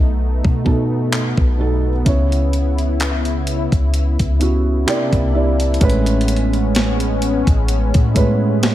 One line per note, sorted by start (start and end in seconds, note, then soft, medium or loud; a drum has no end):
0.00 0.42 B1 loud
0.00 0.64 B2 medium
0.00 2.02 A3 medium
0.00 0.65 B3 medium
0.00 4.83 B3 medium
0.00 0.66 D#4 medium
0.00 2.02 D#4 medium
0.00 0.67 A4 loud
0.45 1.34 B2 medium
0.45 kick medium
0.64 1.25 B2 medium
0.64 1.25 B3 medium
0.64 1.26 D#4 medium
0.64 1.26 A4 medium
0.64 kick medium
1.13 clap loud
1.37 2.03 B1 loud
1.37 kick medium
1.58 1.89 B2 medium
1.58 1.90 B3 medium
1.58 1.90 D#4 medium
1.58 1.91 A4 medium
2.05 3.68 C#2 loud
2.05 3.25 C#3 medium
2.05 4.85 C#3 medium
2.05 3.26 B3 medium
2.05 4.85 E4 medium
2.05 3.26 E4 medium
2.05 3.27 C#5 loud
2.05 kick loud
2.05 closed hi-hat medium
2.32 closed hi-hat soft
2.53 closed hi-hat medium
2.78 closed hi-hat soft
3.00 clap loud
3.00 closed hi-hat medium
3.25 closed hi-hat soft
3.47 closed hi-hat medium
3.72 4.17 C#2 loud
3.72 kick medium
3.72 closed hi-hat soft
3.94 closed hi-hat medium
4.19 4.85 C#2 medium
4.19 kick medium
4.19 closed hi-hat medium
4.39 4.87 C#3 medium
4.39 4.87 B3 medium
4.39 4.86 E4 medium
4.39 4.88 F#4 medium
4.39 closed hi-hat medium
4.86 5.25 C3 medium
4.86 5.80 C3 medium
4.86 5.25 A#3 medium
4.86 5.80 A#3 medium
4.86 5.80 D4 medium
4.86 5.80 E4 medium
4.86 5.26 E4 medium
4.86 5.26 D5 loud
4.86 5.31 G5 medium
4.86 clap medium
4.86 closed hi-hat medium
5.12 5.78 C2 loud
5.12 kick medium
5.12 closed hi-hat medium
5.33 5.65 C3 medium
5.33 5.65 A#3 medium
5.33 5.66 E4 medium
5.33 5.66 D5 medium
5.33 5.78 E5 medium
5.60 closed hi-hat medium
5.74 closed hi-hat medium
5.80 7.43 A1 loud
5.80 7.01 A2 medium
5.80 7.01 G#3 medium
5.80 8.75 G#3 medium
5.80 8.75 B3 medium
5.80 8.75 C#4 loud
5.80 7.02 C#4 medium
5.80 7.02 B4 loud
5.80 kick loud
5.80 closed hi-hat medium
5.90 closed hi-hat medium
6.06 closed hi-hat soft
6.21 closed hi-hat soft
6.28 closed hi-hat medium
6.36 closed hi-hat soft
6.53 closed hi-hat soft
6.75 snare loud
6.75 closed hi-hat medium
7.00 closed hi-hat medium
7.22 closed hi-hat medium
7.47 7.92 A1 loud
7.47 kick loud
7.47 closed hi-hat medium
7.68 closed hi-hat medium
7.94 8.75 A2 loud
7.94 kick loud
7.94 closed hi-hat medium
8.14 8.75 A2 medium
8.14 8.75 G#3 medium
8.14 8.75 C#4 medium
8.14 8.75 B4 medium
8.14 kick medium
8.14 closed hi-hat medium
8.63 snare loud
8.63 closed hi-hat medium